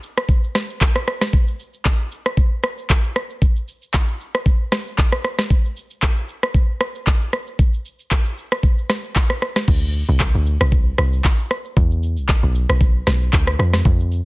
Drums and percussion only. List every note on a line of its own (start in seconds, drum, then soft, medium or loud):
0.03 shaker medium
0.17 cross-stick loud
0.17 shaker medium
0.29 kick loud
0.29 shaker medium
0.43 shaker medium
0.55 cross-stick loud
0.55 snare medium
0.55 shaker medium
0.70 shaker medium
0.81 kick medium
0.81 clap medium
0.81 shaker medium
0.96 cross-stick medium
0.96 shaker medium
1.07 cross-stick medium
1.07 shaker loud
1.21 cross-stick medium
1.21 snare medium
1.21 shaker medium
1.33 kick loud
1.33 shaker medium
1.48 shaker soft
1.60 shaker loud
1.73 shaker medium
1.85 kick medium
1.85 clap medium
1.85 shaker medium
1.99 shaker medium
2.11 shaker medium
2.26 cross-stick medium
2.26 shaker medium
2.37 kick loud
2.37 shaker medium
2.63 cross-stick loud
2.63 shaker medium
2.78 shaker medium
2.90 kick medium
2.90 clap medium
2.90 shaker medium
3.04 shaker medium
3.16 cross-stick medium
3.16 shaker loud
3.29 shaker medium
3.42 kick loud
3.42 shaker medium
3.56 shaker soft
3.68 shaker loud
3.82 shaker soft
3.94 kick medium
3.94 clap medium
3.94 shaker medium
4.08 shaker medium
4.20 shaker medium
4.34 cross-stick medium
4.34 shaker medium
4.46 kick loud
4.46 shaker medium
4.72 cross-stick loud
4.72 snare medium
4.72 shaker medium
4.86 shaker medium
4.98 kick medium
4.98 clap medium
4.98 shaker medium
5.12 cross-stick medium
5.12 shaker medium
5.24 cross-stick medium
5.24 shaker medium
5.38 cross-stick medium
5.38 snare medium
5.38 shaker medium
5.50 kick loud
5.50 shaker medium
5.65 shaker soft
5.77 shaker loud
5.90 shaker medium
6.02 kick medium
6.02 clap medium
6.02 shaker medium
6.16 shaker medium
6.29 shaker medium
6.43 cross-stick loud
6.43 shaker medium
6.54 kick loud
6.54 shaker medium
6.81 cross-stick loud
6.81 shaker medium
6.95 shaker medium
7.07 kick medium
7.07 clap medium
7.07 shaker medium
7.21 shaker medium
7.33 cross-stick medium
7.33 shaker loud
7.47 shaker medium
7.59 kick loud
7.59 shaker medium
7.73 shaker soft
7.86 shaker loud
7.99 shaker medium
8.11 kick medium
8.11 clap medium
8.11 shaker medium
8.25 shaker medium
8.37 shaker medium
8.52 cross-stick loud
8.52 shaker medium
8.63 kick loud
8.63 shaker medium
8.78 shaker soft
8.89 cross-stick loud
8.89 snare medium
8.89 shaker medium
9.04 shaker medium
9.15 kick medium
9.15 clap medium
9.15 shaker medium
9.30 cross-stick medium
9.30 shaker medium
9.42 cross-stick medium
9.42 shaker loud
9.56 cross-stick medium
9.56 snare medium
9.56 shaker medium
9.68 kick loud
9.68 crash loud
9.68 shaker medium
9.82 shaker soft
9.94 shaker loud
10.08 shaker medium
10.20 kick medium
10.20 clap medium
10.20 shaker medium
10.34 shaker medium
10.46 shaker medium
10.61 cross-stick loud
10.61 shaker medium
10.72 kick loud
10.72 shaker medium
10.98 cross-stick loud
10.98 shaker medium
11.13 shaker medium
11.24 kick medium
11.24 clap medium
11.24 shaker medium
11.39 shaker medium
11.50 cross-stick medium
11.50 shaker loud
11.65 shaker medium
11.77 kick loud
11.77 shaker medium
11.91 shaker medium
12.03 shaker loud
12.17 shaker medium
12.29 kick medium
12.29 clap medium
12.29 shaker medium
12.43 shaker medium
12.55 shaker medium
12.69 cross-stick loud
12.69 shaker medium
12.81 kick loud
12.81 shaker medium
13.07 cross-stick loud
13.07 snare medium
13.07 shaker medium
13.21 shaker medium
13.33 kick medium
13.33 clap medium
13.33 shaker medium
13.47 cross-stick loud
13.47 shaker medium
13.59 cross-stick medium
13.59 shaker loud
13.73 cross-stick medium
13.73 snare medium
13.73 shaker medium
13.85 kick loud
13.85 shaker medium
13.99 shaker medium
14.12 shaker loud